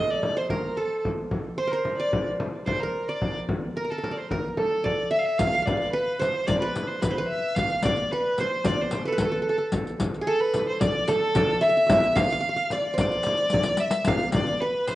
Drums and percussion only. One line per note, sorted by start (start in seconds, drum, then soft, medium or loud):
0.23 frame drum medium
0.50 frame drum medium
1.05 frame drum medium
1.31 frame drum medium
1.85 frame drum medium
2.13 frame drum medium
2.40 frame drum medium
2.67 frame drum medium
3.21 frame drum medium
3.49 frame drum medium
4.04 frame drum medium
4.31 frame drum medium
4.57 frame drum medium
4.86 frame drum medium
5.39 riq medium
5.39 frame drum medium
5.53 riq soft
5.67 riq medium
5.67 frame drum loud
5.81 riq soft
6.22 riq soft
6.22 frame drum medium
6.48 riq medium
6.48 frame drum medium
6.76 riq soft
6.76 frame drum medium
7.02 riq medium
7.02 frame drum medium
7.56 riq medium
7.56 frame drum medium
7.70 riq soft
7.83 riq medium
7.83 frame drum medium
7.96 riq soft
8.38 riq soft
8.38 frame drum medium
8.64 riq medium
8.64 frame drum medium
8.91 riq soft
8.91 frame drum medium
9.18 riq medium
9.18 frame drum medium
9.72 riq medium
9.72 frame drum medium
9.87 riq soft
10.00 riq medium
10.00 frame drum medium
10.14 riq soft
10.54 riq soft
10.54 frame drum medium
10.81 riq medium
10.81 frame drum medium
11.08 riq soft
11.08 frame drum medium
11.35 riq medium
11.35 frame drum medium
11.89 riq medium
11.89 frame drum loud
12.04 riq soft
12.16 riq medium
12.16 frame drum loud
12.30 riq soft
12.57 riq soft
12.70 riq soft
12.70 frame drum medium
12.98 riq medium
12.98 frame drum loud
13.11 riq soft
13.23 riq medium
13.23 frame drum medium
13.37 riq soft
13.50 riq medium
13.54 frame drum loud
13.63 riq medium
13.77 riq medium
13.91 riq medium
14.05 riq medium
14.05 frame drum loud
14.19 riq soft
14.32 riq medium
14.32 frame drum medium
14.47 riq soft
14.88 riq soft
14.88 frame drum medium